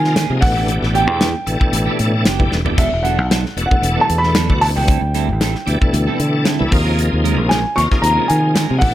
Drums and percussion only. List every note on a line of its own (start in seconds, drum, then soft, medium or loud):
0.04 snare soft
0.16 snare loud
0.16 closed hi-hat medium
0.42 kick loud
0.42 open hi-hat medium
0.68 closed hi-hat medium
0.83 snare soft
0.95 closed hi-hat medium
1.21 snare loud
1.21 closed hi-hat medium
1.47 closed hi-hat medium
1.61 kick medium
1.73 closed hi-hat medium
1.99 closed hi-hat medium
2.25 snare loud
2.25 closed hi-hat medium
2.40 kick medium
2.52 snare medium
2.66 floor tom medium
2.78 kick loud
2.78 closed hi-hat medium
2.78 crash medium
3.05 closed hi-hat medium
3.31 snare medium
3.31 closed hi-hat medium
3.46 snare soft
3.58 closed hi-hat medium
3.71 kick medium
3.83 closed hi-hat medium
4.10 closed hi-hat medium
4.24 snare soft
4.35 snare loud
4.35 closed hi-hat medium
4.50 kick medium
4.62 open hi-hat medium
4.88 kick loud
4.88 closed hi-hat medium
5.14 closed hi-hat medium
5.41 snare loud
5.41 closed hi-hat medium
5.55 snare soft
5.67 closed hi-hat medium
5.82 kick medium
5.94 closed hi-hat medium
6.20 closed hi-hat medium
6.45 snare loud
6.45 closed hi-hat medium
6.72 kick medium
6.72 open hi-hat medium
6.99 closed hi-hat medium
7.25 closed hi-hat medium
7.51 snare loud
7.51 closed hi-hat medium
7.78 snare soft
7.78 closed hi-hat medium
7.91 kick medium
7.91 snare soft
8.04 closed hi-hat medium
8.30 closed hi-hat medium
8.56 snare loud
8.56 closed hi-hat medium
8.81 kick medium
8.81 open hi-hat medium